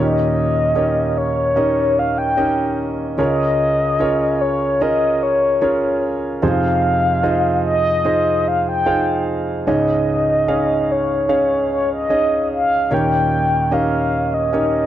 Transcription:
Already playing: grand piano D#2 A#2 C#4 D#4 A#4 C#5, soft synth lead D#5
0.01 grand piano G4
0.75 grand piano C#4 D#4 G4 A#4 C#5
1.18 soft synth lead C#5
1.56 grand piano C#4 D#4 G4 A#4 D#5
1.99 soft synth lead F5
2.18 soft synth lead G5
2.37 grand piano C#4 D#4 G4 A#4 D#5
3.18 grand piano C#2 C#3 C#4 F4 G#4 A#4 C#5, soft synth lead D#5
4.00 grand piano C#4 F4 G#4 A#4 C#5
4.41 soft synth lead C#5
4.81 grand piano C#4 F4 G#4 A#4 D#5, soft synth lead D#5
5.23 soft synth lead C#5
5.61 grand piano C#4 F4 G#4 A#4 C#5
6.42 grand piano F2 C3 D#4 F4 G#4 C5 D#5, soft synth lead F5
7.23 grand piano D#4 F4 G#4 C5 D#5
7.67 soft synth lead D#5
8.05 grand piano D#4 F4 G#4 C5 D#5
8.48 soft synth lead F5
8.68 soft synth lead G5
8.86 grand piano D#4 F4 G#4 C5 F5
9.67 grand piano C#2 G#2 C#4 D#4 G#4 C#5 D#5, soft synth lead D#5
10.48 grand piano C#4 D#4 G#4 C#5 F5
10.91 soft synth lead C#5
11.29 grand piano C#4 D#4 G#4 C#5 F5
11.72 soft synth lead C#5
11.93 soft synth lead D#5
12.10 grand piano C#4 D#4 G#4 C#5 D#5
12.53 soft synth lead F5
12.91 grand piano D#2 A#2 C#4 D#4 G4 A#4 C#5, soft synth lead G5
13.71 grand piano C#4 D#4 G4 A#4 D#5, soft synth lead F5
14.34 soft synth lead D#5
14.53 grand piano C#4 D#4 G4 A#4 C#5

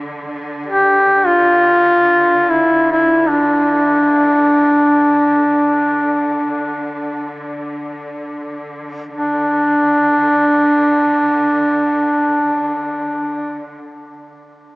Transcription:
Already playing: string section D3
0.66 duduk G4
1.26 duduk F4
2.50 duduk E4
2.91 duduk E4
3.28 duduk D4
9.13 string section D3, duduk D4

